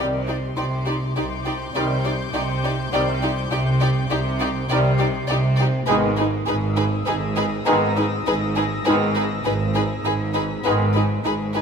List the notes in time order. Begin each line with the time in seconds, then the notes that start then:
Already playing: D5 D6
0.00 C2 C3 D#3 G3 C4 D5 C6
0.27 D#4 G4 D5
0.56 C2 C3 D#4 G4 D5 C6 D6
0.86 D#4 G4 D5
1.16 C2 C3 D#4 G4 D5 G6
1.46 D#4 G4 D5
1.74 C2 C3 D#3 G3 C4 D#4 G4 D5
2.04 D#4 G4 D5
2.34 C2 C3 D#4 G4 D5
2.64 D#4 G4 D5
2.92 C2 C3 D#3 G3 C4 D#4 G4 D5
3.23 D#4 G4 D5
3.51 C2 C3 D#4 G4 D5
3.81 D#4 G4 D5
4.10 C2 C3 D#4 G4 D5
4.40 D#4 G4 D5
4.69 C2 C3 D#3 G3 C4 D#4 G4 D5
4.99 D#4 G4 D5
5.28 C2 C3 D#4 G4 D5
5.57 D#4 G4 D5
5.86 G#1 G#2 D#3 G#3 B3 D#4 G#4 B4 D#6
6.16 D#4 G#4 B4
6.46 G#1 G#2 D#4 G#4 B4 E6
6.76 D#4 G#4 B4
7.06 G#1 G#2 D#4 G#4 B4 A#6
7.36 D#4 G#4 B4
7.65 G#1 G#2 D#3 G#3 B3 D#4 G#4 B4 A#5
7.96 D#4 G#4 B4
8.26 G#1 G#2 D#4 G#4 B4
8.56 D#4 G#4 B4
8.86 G#1 G#2 D#3 G#3 B3 D#4 G#4 B4
9.15 D#4 G#4 B4
9.45 G#1 G#2 D#4 G#4 B4
9.75 D#4 G#4 B4
10.04 G#1 G#2 D#4 G#4 B4
10.34 D#4 G#4 B4
10.40 B6
10.64 G#1 G#2 D#3 G#3 B3 D#4 G#4 B4
10.93 D#4 G#4 B4
11.24 G#1 G#2 D#4 G#4 B4
11.54 D#4 G#4 B4